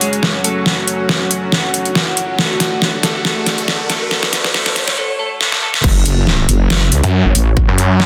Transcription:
Already playing: supersaw synth F#3 C#4 F#4, ambient pad F#4 C#5 F#5 B5, riser
0.01 clean electric guitar G#3 G#4, closed hi-hat
0.13 closed hi-hat
0.23 snare
0.44 clean electric guitar A3 A4, closed hi-hat
0.66 snare
0.88 closed hi-hat
1.09 snare
1.31 closed hi-hat
1.52 snare
1.74 closed hi-hat
1.85 closed hi-hat
1.95 snare
2.17 closed hi-hat
2.38 supersaw synth D3 A3 F#4, clean electric guitar A3 A4, snare
2.50 ambient pad D5
2.60 snare, closed hi-hat
2.82 snare
3.03 clean electric guitar A3 A4, snare, closed hi-hat
3.25 clean electric guitar A3 A4, snare
3.46 snare, closed hi-hat
3.58 closed hi-hat
3.68 snare
3.90 clean electric guitar A3 A4, snare, closed hi-hat
4.11 clean electric guitar A3 A4, snare
4.23 snare
4.33 snare, closed hi-hat
4.44 snare
4.54 clean electric guitar A3 A4, snare
4.66 snare
4.76 snare, closed hi-hat
4.88 snare
4.97 clean electric guitar A3 A4
5.19 clean electric guitar A3 A4
5.41 clean electric guitar A3 A4, snare
5.52 snare
5.62 clean electric guitar A3 A4
5.74 snare
5.84 wobble bass F#1, kick, crash
6.05 ambient pad C#5, closed hi-hat
6.27 snare
6.49 wobble bass F#1, closed hi-hat
6.70 snare
6.92 wobble bass C#2, closed hi-hat
7.03 detuned saw bass F#2, closed hi-hat
7.25 wobble bass G#1
7.35 wobble bass A1, closed hi-hat
7.57 kick
7.68 detuned saw bass F#2
7.78 closed hi-hat
8.00 snare

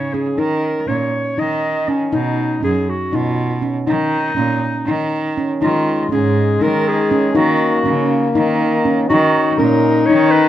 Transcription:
Already playing: cello C#3, clarinet C#5
0.14 handpan C#4, clarinet G#4
0.38 cello D#3, handpan D#4, clarinet A#4
0.88 cello A#2, handpan C#4, clarinet C#5
1.38 cello D#3, handpan D#4, clarinet D#5
1.88 handpan C#4, clarinet C#4
2.12 cello B2, handpan D#4, clarinet D#4
2.63 cello F#2, handpan C#4, clarinet G#4
2.89 clarinet F#4
3.12 cello B2, handpan D#4, clarinet F4
3.62 handpan C#4
3.87 cello D#3, handpan D#4, clarinet D#4
4.37 cello A#2, handpan C#4
4.86 cello D#3, handpan D#4
5.38 handpan C#4
5.60 cello D#3, french horn G#3, handpan D#4, clarinet F4
6.11 cello G#2, handpan C#4, clarinet G#4
6.61 cello D#3, handpan D#4, clarinet A#4
6.88 clarinet G#4
7.11 handpan C#4
7.34 cello D#3, french horn A#3, handpan D#4, clarinet F#4
7.85 cello C#3, handpan C#4
8.35 cello D#3, handpan D#4
8.85 handpan C#4
9.08 cello D#3, french horn D#4, handpan D#4, clarinet F#4
9.58 cello A#2, handpan C#4, clarinet A#4
10.06 cello D#3, handpan D#4, clarinet C#5
10.31 clarinet B4

